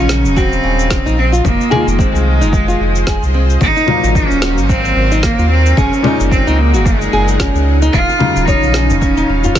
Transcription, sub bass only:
0, 0, Header, 1, 2, 480
1, 0, Start_track
1, 0, Tempo, 540541
1, 1288, Time_signature, 4, 2, 24, 8
1, 8519, End_track
2, 0, Start_track
2, 0, Title_t, "Sub bass"
2, 0, Program_c, 0, 38
2, 0, Note_on_c, 0, 34, 90
2, 218, Note_on_c, 0, 27, 99
2, 232, Note_off_c, 0, 34, 0
2, 533, Note_off_c, 0, 27, 0
2, 563, Note_on_c, 0, 27, 102
2, 900, Note_off_c, 0, 27, 0
2, 939, Note_on_c, 0, 34, 91
2, 1254, Note_off_c, 0, 34, 0
2, 1284, Note_on_c, 0, 29, 107
2, 1396, Note_off_c, 0, 29, 0
2, 1658, Note_on_c, 0, 29, 81
2, 1849, Note_off_c, 0, 29, 0
2, 1897, Note_on_c, 0, 36, 90
2, 2140, Note_on_c, 0, 29, 102
2, 2154, Note_off_c, 0, 36, 0
2, 2454, Note_off_c, 0, 29, 0
2, 2486, Note_on_c, 0, 29, 95
2, 2821, Note_off_c, 0, 29, 0
2, 2864, Note_on_c, 0, 36, 95
2, 3176, Note_off_c, 0, 36, 0
2, 3206, Note_on_c, 0, 32, 96
2, 3317, Note_off_c, 0, 32, 0
2, 3583, Note_on_c, 0, 32, 87
2, 3771, Note_off_c, 0, 32, 0
2, 3823, Note_on_c, 0, 27, 90
2, 4057, Note_on_c, 0, 32, 98
2, 4071, Note_off_c, 0, 27, 0
2, 4373, Note_off_c, 0, 32, 0
2, 4402, Note_on_c, 0, 32, 105
2, 4739, Note_off_c, 0, 32, 0
2, 4777, Note_on_c, 0, 39, 88
2, 5093, Note_off_c, 0, 39, 0
2, 5130, Note_on_c, 0, 30, 104
2, 5239, Note_off_c, 0, 30, 0
2, 5506, Note_on_c, 0, 30, 91
2, 5693, Note_off_c, 0, 30, 0
2, 5743, Note_on_c, 0, 37, 88
2, 5979, Note_on_c, 0, 30, 101
2, 5992, Note_off_c, 0, 37, 0
2, 6293, Note_off_c, 0, 30, 0
2, 6328, Note_on_c, 0, 30, 104
2, 6662, Note_off_c, 0, 30, 0
2, 6697, Note_on_c, 0, 37, 99
2, 7012, Note_off_c, 0, 37, 0
2, 7049, Note_on_c, 0, 27, 102
2, 7159, Note_off_c, 0, 27, 0
2, 7422, Note_on_c, 0, 27, 80
2, 7611, Note_off_c, 0, 27, 0
2, 7664, Note_on_c, 0, 34, 91
2, 7902, Note_on_c, 0, 27, 101
2, 7916, Note_off_c, 0, 34, 0
2, 8215, Note_off_c, 0, 27, 0
2, 8248, Note_on_c, 0, 27, 101
2, 8519, Note_off_c, 0, 27, 0
2, 8519, End_track
0, 0, End_of_file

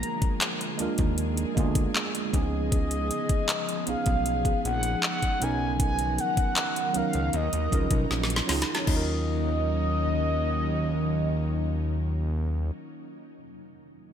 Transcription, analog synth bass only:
0, 0, Header, 1, 2, 480
1, 0, Start_track
1, 0, Key_signature, -6, "minor"
1, 0, Tempo, 769231
1, 1698, Time_signature, 4, 2, 24, 8
1, 8817, End_track
2, 0, Start_track
2, 0, Title_t, "Analog synth bass"
2, 0, Program_c, 0, 38
2, 502, Note_on_c, 0, 39, 50
2, 549, Note_off_c, 0, 39, 0
2, 618, Note_on_c, 0, 39, 101
2, 907, Note_off_c, 0, 39, 0
2, 981, Note_on_c, 0, 38, 95
2, 1173, Note_off_c, 0, 38, 0
2, 1459, Note_on_c, 0, 37, 106
2, 1941, Note_off_c, 0, 37, 0
2, 2422, Note_on_c, 0, 35, 50
2, 2469, Note_off_c, 0, 35, 0
2, 2539, Note_on_c, 0, 35, 92
2, 2828, Note_off_c, 0, 35, 0
2, 2902, Note_on_c, 0, 34, 94
2, 3093, Note_off_c, 0, 34, 0
2, 3381, Note_on_c, 0, 35, 107
2, 3862, Note_off_c, 0, 35, 0
2, 4341, Note_on_c, 0, 37, 50
2, 4388, Note_off_c, 0, 37, 0
2, 4460, Note_on_c, 0, 37, 95
2, 4556, Note_off_c, 0, 37, 0
2, 4579, Note_on_c, 0, 39, 105
2, 4675, Note_off_c, 0, 39, 0
2, 4701, Note_on_c, 0, 39, 90
2, 4796, Note_off_c, 0, 39, 0
2, 4821, Note_on_c, 0, 37, 92
2, 4916, Note_off_c, 0, 37, 0
2, 4935, Note_on_c, 0, 35, 90
2, 5033, Note_off_c, 0, 35, 0
2, 5061, Note_on_c, 0, 34, 92
2, 5252, Note_off_c, 0, 34, 0
2, 5300, Note_on_c, 0, 37, 98
2, 5396, Note_off_c, 0, 37, 0
2, 5539, Note_on_c, 0, 39, 104
2, 7933, Note_off_c, 0, 39, 0
2, 8817, End_track
0, 0, End_of_file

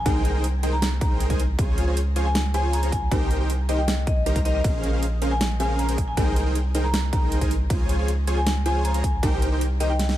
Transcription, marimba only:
0, 0, Header, 1, 2, 480
1, 0, Start_track
1, 0, Tempo, 382166
1, 73, Time_signature, 4, 2, 24, 8
1, 12781, End_track
2, 0, Start_track
2, 0, Title_t, "Marimba"
2, 0, Program_c, 0, 12
2, 912, Note_on_c, 0, 82, 94
2, 1113, Note_off_c, 0, 82, 0
2, 1271, Note_on_c, 0, 82, 97
2, 1632, Note_off_c, 0, 82, 0
2, 2832, Note_on_c, 0, 80, 95
2, 3169, Note_off_c, 0, 80, 0
2, 3191, Note_on_c, 0, 80, 98
2, 3393, Note_off_c, 0, 80, 0
2, 3431, Note_on_c, 0, 82, 91
2, 3633, Note_off_c, 0, 82, 0
2, 3671, Note_on_c, 0, 80, 93
2, 3873, Note_off_c, 0, 80, 0
2, 4633, Note_on_c, 0, 75, 92
2, 4729, Note_off_c, 0, 75, 0
2, 4753, Note_on_c, 0, 79, 96
2, 5089, Note_off_c, 0, 79, 0
2, 5113, Note_on_c, 0, 75, 91
2, 5190, Note_off_c, 0, 75, 0
2, 5232, Note_on_c, 0, 75, 70
2, 5309, Note_off_c, 0, 75, 0
2, 5591, Note_on_c, 0, 75, 92
2, 5669, Note_off_c, 0, 75, 0
2, 5712, Note_on_c, 0, 75, 76
2, 5789, Note_off_c, 0, 75, 0
2, 6672, Note_on_c, 0, 80, 98
2, 7009, Note_off_c, 0, 80, 0
2, 7032, Note_on_c, 0, 80, 96
2, 7233, Note_off_c, 0, 80, 0
2, 7273, Note_on_c, 0, 82, 88
2, 7474, Note_off_c, 0, 82, 0
2, 7633, Note_on_c, 0, 80, 93
2, 7801, Note_off_c, 0, 80, 0
2, 8593, Note_on_c, 0, 82, 92
2, 8794, Note_off_c, 0, 82, 0
2, 8953, Note_on_c, 0, 82, 92
2, 9313, Note_off_c, 0, 82, 0
2, 10513, Note_on_c, 0, 80, 96
2, 10849, Note_off_c, 0, 80, 0
2, 10874, Note_on_c, 0, 80, 94
2, 11074, Note_off_c, 0, 80, 0
2, 11113, Note_on_c, 0, 82, 89
2, 11314, Note_off_c, 0, 82, 0
2, 11353, Note_on_c, 0, 80, 96
2, 11554, Note_off_c, 0, 80, 0
2, 12313, Note_on_c, 0, 75, 88
2, 12409, Note_off_c, 0, 75, 0
2, 12432, Note_on_c, 0, 79, 92
2, 12768, Note_off_c, 0, 79, 0
2, 12781, End_track
0, 0, End_of_file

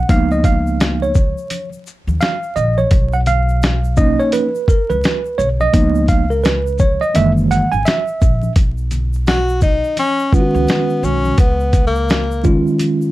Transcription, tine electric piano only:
0, 0, Header, 1, 2, 480
1, 0, Start_track
1, 0, Tempo, 705882
1, 61, Time_signature, 4, 2, 24, 8
1, 8921, End_track
2, 0, Start_track
2, 0, Title_t, "Tine electric piano"
2, 0, Program_c, 0, 4
2, 0, Note_on_c, 0, 78, 95
2, 59, Note_on_c, 0, 53, 64
2, 60, Note_on_c, 0, 58, 59
2, 64, Note_on_c, 0, 59, 57
2, 66, Note_on_c, 0, 63, 63
2, 69, Note_on_c, 0, 77, 107
2, 72, Note_off_c, 0, 78, 0
2, 204, Note_off_c, 0, 77, 0
2, 215, Note_on_c, 0, 75, 85
2, 306, Note_off_c, 0, 75, 0
2, 306, Note_on_c, 0, 77, 96
2, 696, Note_on_c, 0, 73, 78
2, 704, Note_off_c, 0, 77, 0
2, 753, Note_off_c, 0, 53, 0
2, 754, Note_off_c, 0, 58, 0
2, 755, Note_off_c, 0, 59, 0
2, 757, Note_off_c, 0, 63, 0
2, 1146, Note_off_c, 0, 73, 0
2, 1500, Note_on_c, 0, 77, 96
2, 1740, Note_on_c, 0, 75, 86
2, 1748, Note_off_c, 0, 77, 0
2, 1890, Note_on_c, 0, 73, 77
2, 1894, Note_off_c, 0, 75, 0
2, 2132, Note_on_c, 0, 78, 84
2, 2137, Note_off_c, 0, 73, 0
2, 2172, Note_off_c, 0, 78, 0
2, 2224, Note_on_c, 0, 77, 91
2, 2700, Note_on_c, 0, 58, 58
2, 2702, Note_on_c, 0, 75, 90
2, 2705, Note_on_c, 0, 61, 53
2, 2709, Note_on_c, 0, 63, 61
2, 2717, Note_off_c, 0, 77, 0
2, 2853, Note_on_c, 0, 73, 88
2, 2855, Note_off_c, 0, 75, 0
2, 2937, Note_off_c, 0, 73, 0
2, 2944, Note_on_c, 0, 71, 86
2, 3042, Note_off_c, 0, 58, 0
2, 3044, Note_off_c, 0, 61, 0
2, 3047, Note_off_c, 0, 63, 0
2, 3186, Note_on_c, 0, 70, 88
2, 3190, Note_off_c, 0, 71, 0
2, 3322, Note_off_c, 0, 70, 0
2, 3330, Note_on_c, 0, 71, 88
2, 3659, Note_on_c, 0, 73, 91
2, 3671, Note_off_c, 0, 71, 0
2, 3727, Note_off_c, 0, 73, 0
2, 3812, Note_on_c, 0, 75, 97
2, 3895, Note_on_c, 0, 53, 63
2, 3899, Note_on_c, 0, 58, 56
2, 3900, Note_on_c, 0, 59, 56
2, 3903, Note_on_c, 0, 63, 66
2, 4119, Note_off_c, 0, 75, 0
2, 4139, Note_on_c, 0, 77, 93
2, 4239, Note_off_c, 0, 53, 0
2, 4241, Note_off_c, 0, 58, 0
2, 4242, Note_off_c, 0, 59, 0
2, 4244, Note_off_c, 0, 63, 0
2, 4287, Note_on_c, 0, 70, 83
2, 4293, Note_off_c, 0, 77, 0
2, 4376, Note_on_c, 0, 71, 83
2, 4382, Note_off_c, 0, 70, 0
2, 4602, Note_off_c, 0, 71, 0
2, 4622, Note_on_c, 0, 73, 88
2, 4767, Note_on_c, 0, 75, 93
2, 4775, Note_off_c, 0, 73, 0
2, 4856, Note_on_c, 0, 52, 57
2, 4859, Note_on_c, 0, 56, 54
2, 4863, Note_off_c, 0, 75, 0
2, 4863, Note_on_c, 0, 58, 54
2, 4864, Note_on_c, 0, 51, 65
2, 4865, Note_on_c, 0, 76, 96
2, 4972, Note_off_c, 0, 76, 0
2, 5106, Note_on_c, 0, 78, 96
2, 5200, Note_off_c, 0, 52, 0
2, 5201, Note_off_c, 0, 56, 0
2, 5203, Note_off_c, 0, 58, 0
2, 5204, Note_off_c, 0, 51, 0
2, 5247, Note_on_c, 0, 80, 98
2, 5257, Note_off_c, 0, 78, 0
2, 5341, Note_on_c, 0, 76, 95
2, 5343, Note_off_c, 0, 80, 0
2, 5794, Note_off_c, 0, 76, 0
2, 7021, Note_on_c, 0, 51, 60
2, 7021, Note_on_c, 0, 56, 54
2, 7025, Note_on_c, 0, 61, 59
2, 7029, Note_on_c, 0, 65, 55
2, 7072, Note_on_c, 0, 66, 68
2, 7080, Note_off_c, 0, 65, 0
2, 7705, Note_off_c, 0, 51, 0
2, 7705, Note_off_c, 0, 56, 0
2, 7707, Note_off_c, 0, 61, 0
2, 7730, Note_off_c, 0, 66, 0
2, 8454, Note_on_c, 0, 51, 68
2, 8456, Note_on_c, 0, 56, 63
2, 8460, Note_on_c, 0, 61, 59
2, 8461, Note_on_c, 0, 65, 74
2, 8921, Note_off_c, 0, 51, 0
2, 8921, Note_off_c, 0, 56, 0
2, 8921, Note_off_c, 0, 61, 0
2, 8921, Note_off_c, 0, 65, 0
2, 8921, End_track
0, 0, End_of_file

